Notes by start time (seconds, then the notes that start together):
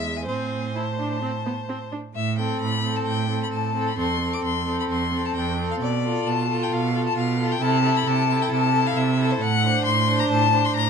Already playing: E2 G#3 E5
0.17 G#5
0.28 A2 C4 C5 G#5
0.75 E4 A5
0.99 D4
1.22 C4
1.46 B3
1.69 C4
1.92 D4
2.15 A2 E5
2.38 C4 A4 G5
2.61 A2 B5
2.83 C4 A4
2.96 A5
3.06 A2 G5
3.29 C4 A4
3.43 B5
3.53 A2 A5
3.75 C4 A4
3.88 B5
3.97 F2 C4 A4 C6
4.20 C4 A4
4.34 D6
4.44 F2 C6
4.65 C4 A4
4.80 B5
4.90 F2 C6
5.12 C4 A4
5.25 A5
5.35 F2 G5
5.59 C4 A4
5.71 F5
5.81 B2 D5
6.04 F4 A4
6.27 B2 A5
6.48 F4 A4
6.63 G5
6.71 B2 F5
6.94 F4 A4
7.07 A5
7.16 B2 F5
7.38 F4 A4
7.52 G5
7.61 C3 E4 A4 A5
7.82 E4 A4
7.97 B5
8.06 C3 A5
8.28 E4 A4
8.42 G5
8.51 C3 A5
8.74 E4 A4
8.87 F5
8.96 C3 E5
9.18 E4 A4
9.31 C5
9.41 A2 F#5
9.64 D4 C5
9.85 A2 C6
10.08 D4 C5
10.20 A#5
10.30 A2 A5
10.52 D4 C5
10.65 C6
10.75 A2 A#5